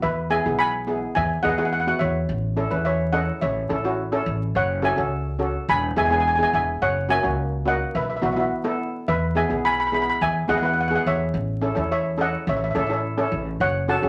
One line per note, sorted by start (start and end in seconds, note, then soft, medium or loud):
0.02 0.38 E2 medium
0.02 0.29 B4 medium
0.02 0.30 E5 medium
0.30 0.39 B3 medium
0.30 0.39 E4 medium
0.30 0.39 G#4 medium
0.30 0.57 E5 medium
0.30 0.59 G#5 loud
0.45 1.03 B1 medium
0.45 0.71 B3 medium
0.45 0.71 E4 medium
0.45 0.71 G#4 medium
0.59 1.12 G#5 medium
0.59 1.17 B5 loud
0.87 1.21 B3 medium
0.87 1.21 E4 medium
0.87 1.22 G#4 medium
1.15 1.39 E2 loud
1.15 1.43 E5 medium
1.15 1.42 G#5 loud
1.43 1.90 E2 medium
1.43 1.52 B3 medium
1.43 1.52 E4 medium
1.43 1.53 G#4 medium
1.43 1.51 D#5 medium
1.43 1.48 F#5 medium
1.49 1.57 F#5 medium
1.58 1.75 B3 medium
1.58 1.75 E4 medium
1.58 1.75 G#4 medium
1.58 1.64 F#5 medium
1.65 1.71 F#5 medium
1.73 1.79 F#5 medium
1.80 1.87 F#5 medium
1.87 2.29 B3 medium
1.87 2.29 E4 medium
1.87 2.29 F#4 medium
1.87 1.96 F#5 medium
1.99 2.24 E2 loud
1.99 2.82 C#5 medium
1.99 2.84 E5 medium
2.29 2.64 A1 medium
2.57 2.65 C#4 medium
2.57 2.65 E4 medium
2.57 2.66 A4 medium
2.70 3.29 E2 loud
2.70 2.96 C#4 medium
2.70 2.96 E4 medium
2.70 2.97 B4 medium
2.85 3.12 C#5 medium
2.85 3.11 E5 medium
3.13 3.47 C#4 medium
3.13 3.48 E4 medium
3.13 3.48 A4 medium
3.13 3.40 D#5 medium
3.13 3.42 F#5 medium
3.41 3.65 A1 loud
3.41 3.95 C#5 medium
3.41 3.94 E5 medium
3.69 4.16 A1 medium
3.69 3.78 C#4 medium
3.69 3.79 E4 medium
3.69 3.79 A4 medium
3.84 4.01 C#4 medium
3.84 4.01 E4 medium
3.84 4.02 F#4 medium
4.12 4.55 C#4 medium
4.12 4.55 E4 medium
4.12 4.55 A4 loud
4.26 4.50 A1 loud
4.55 4.90 F#1 loud
4.55 4.82 C#5 medium
4.55 4.85 F#5 medium
4.82 4.92 C#4 medium
4.82 4.92 F#4 medium
4.82 4.92 A4 medium
4.82 5.65 E5 medium
4.82 5.68 G#5 loud
4.96 5.55 C#2 medium
4.96 5.22 C#4 medium
4.96 5.23 F#4 medium
4.96 5.23 A4 medium
5.39 5.68 C#4 medium
5.39 5.68 F#4 medium
5.39 5.68 A4 medium
5.69 5.92 E1 loud
5.69 5.95 G#5 medium
5.69 5.98 B5 loud
5.96 6.43 E1 loud
5.96 6.05 B3 medium
5.96 6.05 E4 medium
5.96 6.05 G#4 medium
5.96 6.04 E5 medium
5.96 6.04 G#5 loud
6.05 6.11 G#5 medium
6.10 6.28 B3 medium
6.10 6.28 E4 medium
6.10 6.28 G#4 medium
6.10 6.19 G#5 medium
6.20 6.27 G#5 medium
6.28 6.34 G#5 medium
6.35 6.81 B3 medium
6.35 6.81 E4 medium
6.35 6.81 G#4 medium
6.35 6.42 G#5 medium
6.43 6.49 G#5 medium
6.53 6.76 E1 loud
6.53 6.81 E5 medium
6.53 6.83 G#5 medium
6.82 7.16 F#1 loud
6.82 7.08 C#5 medium
6.82 7.11 F#5 medium
7.09 7.18 A#3 medium
7.09 7.18 C#4 medium
7.09 7.18 F#4 medium
7.09 7.63 E5 medium
7.09 7.68 G#5 loud
7.23 7.82 C#2 medium
7.23 7.49 A#3 medium
7.23 7.49 C#4 medium
7.23 7.49 F#4 medium
7.65 7.94 A#3 medium
7.65 7.94 C#4 medium
7.65 7.94 F#4 medium
7.65 7.94 D#5 medium
7.65 7.94 F#5 medium
7.95 8.18 B1 loud
7.95 8.03 B4 medium
7.95 8.01 E5 medium
8.02 8.09 E5 medium
8.10 8.15 E5 medium
8.17 8.24 E5 medium
8.22 8.46 B1 loud
8.22 8.31 B3 medium
8.22 8.31 E4 medium
8.22 8.31 F#4 medium
8.22 8.32 E5 medium
8.33 8.54 B3 medium
8.33 8.54 E4 medium
8.33 8.54 F#4 medium
8.33 8.39 E5 medium
8.40 8.47 E5 medium
8.64 9.07 B3 medium
8.64 9.07 E4 medium
8.64 9.07 A4 medium
9.08 9.43 E2 loud
9.08 9.35 B4 medium
9.08 9.34 E5 medium
9.35 9.44 B3 medium
9.35 9.44 E4 medium
9.35 9.45 G#4 medium
9.35 9.63 E5 medium
9.35 9.65 G#5 medium
9.49 10.08 B1 medium
9.49 9.75 B3 medium
9.49 9.76 E4 medium
9.49 9.76 G#4 medium
9.65 9.72 G#5 medium
9.65 9.71 B5 loud
9.72 9.79 B5 medium
9.80 9.86 B5 medium
9.87 9.93 B5 medium
9.92 10.26 B3 medium
9.92 10.27 E4 medium
9.92 10.27 G#4 medium
9.92 10.01 B5 medium
10.02 10.08 B5 medium
10.10 10.16 B5 medium
10.21 10.44 E2 loud
10.21 10.48 E5 medium
10.21 10.51 G#5 loud
10.48 10.95 E2 loud
10.48 10.57 B3 medium
10.48 10.58 E4 medium
10.48 10.58 G#4 medium
10.48 10.57 D#5 medium
10.48 10.56 F#5 medium
10.58 10.64 F#5 medium
10.62 10.80 B3 medium
10.62 10.80 E4 medium
10.62 10.80 B4 medium
10.62 10.72 F#5 medium
10.73 10.79 F#5 medium
10.81 10.87 F#5 medium
10.88 11.33 B3 medium
10.88 11.33 E4 medium
10.88 11.34 G#4 medium
10.88 10.94 F#5 medium
10.95 11.02 F#5 medium
11.06 11.29 E2 loud
11.06 11.88 C#5 medium
11.06 11.87 E5 medium
11.34 11.69 A1 loud
11.61 11.71 C#4 medium
11.61 11.71 E4 medium
11.61 11.71 A4 medium
11.75 12.34 E2 loud
11.75 12.01 C#4 medium
11.75 12.01 E4 medium
11.75 12.02 A4 medium
11.92 12.17 C#5 medium
11.92 12.18 E5 medium
12.18 12.52 C#4 medium
12.18 12.52 E4 medium
12.18 12.53 A4 medium
12.18 12.46 D#5 medium
12.18 12.49 F#5 medium
12.47 12.70 A1 loud
12.47 12.55 C#5 medium
12.47 12.55 E5 medium
12.57 12.63 E5 medium
12.64 12.69 E5 medium
12.71 12.77 E5 medium
12.75 13.22 A1 loud
12.75 12.84 C#4 medium
12.75 12.84 E4 medium
12.75 12.84 A4 medium
12.79 12.85 E5 medium
12.87 13.07 C#4 medium
12.87 13.06 E4 medium
12.87 13.07 A4 medium
12.87 12.92 E5 medium
12.93 13.00 E5 medium
13.18 13.60 C#4 medium
13.18 13.60 E4 medium
13.18 13.60 A4 loud
13.32 13.55 A1 loud
13.60 13.95 F#1 loud
13.60 13.87 C#5 medium
13.60 13.87 F#5 loud
13.88 13.97 C#4 medium
13.88 13.97 F#4 medium
13.88 13.97 A4 medium
13.88 14.09 F#5 medium
13.88 14.09 A5 medium
14.02 14.09 C#2 loud
14.02 14.09 C#4 medium
14.02 14.09 F#4 medium
14.02 14.09 G#4 medium